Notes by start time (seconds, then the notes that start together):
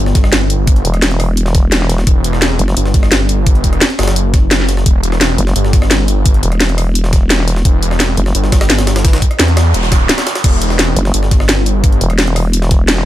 Already playing: G1, impact
0.06 snare
0.15 kick, snare, closed hi-hat
0.24 cross-stick, snare
0.33 snare, closed hi-hat
0.50 closed hi-hat
0.67 kick, closed hi-hat
0.76 closed hi-hat
0.85 E1, closed hi-hat
0.94 cross-stick, closed hi-hat
1.02 snare, closed hi-hat
1.11 closed hi-hat
1.20 cross-stick, open hi-hat
1.37 closed hi-hat
1.46 snare
1.55 kick, snare, closed hi-hat
1.72 snare, closed hi-hat
1.81 snare
1.90 snare, closed hi-hat
1.98 snare
2.07 E1, kick, closed hi-hat
2.24 E1, closed hi-hat
2.33 cross-stick, snare
2.42 snare, closed hi-hat
2.59 F#1, closed hi-hat
2.68 snare
2.77 G1, closed hi-hat
2.86 snare
2.94 kick, snare, closed hi-hat
3.03 cross-stick, snare
3.12 snare, closed hi-hat
3.29 closed hi-hat
3.46 kick, closed hi-hat
3.55 closed hi-hat
3.64 E1, kick, closed hi-hat
3.73 cross-stick, closed hi-hat
3.81 snare, closed hi-hat
3.90 closed hi-hat
3.99 F#1, cross-stick, snare, closed hi-hat, open hi-hat
4.03 snare, closed hi-hat
4.08 snare, closed hi-hat
4.16 closed hi-hat
4.34 kick, snare, closed hi-hat
4.51 snare, closed hi-hat
4.60 snare
4.69 snare, closed hi-hat
4.77 snare
4.86 E1, kick, closed hi-hat
5.03 E1, closed hi-hat
5.12 cross-stick, snare
5.21 snare, closed hi-hat
5.38 F#1, closed hi-hat
5.47 snare
5.56 G1, closed hi-hat
5.65 snare
5.73 kick, snare, closed hi-hat
5.82 cross-stick, snare
5.91 snare, closed hi-hat
6.08 closed hi-hat
6.26 kick, closed hi-hat
6.34 closed hi-hat
6.43 E1, closed hi-hat
6.52 cross-stick, closed hi-hat
6.60 snare, closed hi-hat
6.69 closed hi-hat
6.78 cross-stick, open hi-hat
6.95 closed hi-hat
7.04 snare
7.13 kick, snare, closed hi-hat
7.30 snare, closed hi-hat
7.39 snare
7.48 snare, closed hi-hat
7.56 snare
7.65 E1, kick, closed hi-hat
7.83 E1, closed hi-hat
7.91 cross-stick, snare
8.00 snare, closed hi-hat
8.17 F#1, closed hi-hat
8.26 snare
8.35 G1, closed hi-hat
8.44 snare
8.52 kick, snare, closed hi-hat
8.61 cross-stick, snare, closed hi-hat
8.70 snare, closed hi-hat
8.78 snare, closed hi-hat
8.87 snare, closed hi-hat
8.96 snare, closed hi-hat
9.05 kick, snare, closed hi-hat, noise sweep
9.13 snare, closed hi-hat
9.22 kick, closed hi-hat
9.31 cross-stick, closed hi-hat
9.39 E2, snare, closed hi-hat
9.48 closed hi-hat
9.57 cross-stick, snare, closed hi-hat, open hi-hat
9.74 E1, closed hi-hat
9.83 snare
9.92 kick, snare, closed hi-hat
10.09 snare, closed hi-hat
10.18 snare, closed hi-hat
10.27 snare, closed hi-hat
10.35 snare, closed hi-hat
10.44 E1, kick, closed hi-hat, crash
10.62 E1, closed hi-hat
10.70 cross-stick, snare
10.79 snare, closed hi-hat
10.96 F#1, closed hi-hat
11.05 snare
11.14 G1, closed hi-hat
11.23 snare
11.31 kick, snare, closed hi-hat
11.40 cross-stick, snare
11.49 snare, closed hi-hat
11.66 closed hi-hat
11.84 kick, closed hi-hat
11.92 closed hi-hat
12.01 E1, closed hi-hat
12.10 cross-stick, closed hi-hat
12.19 snare, closed hi-hat
12.27 closed hi-hat
12.36 cross-stick, open hi-hat
12.53 closed hi-hat
12.62 snare
12.71 kick, snare, closed hi-hat
12.88 snare, closed hi-hat
12.97 snare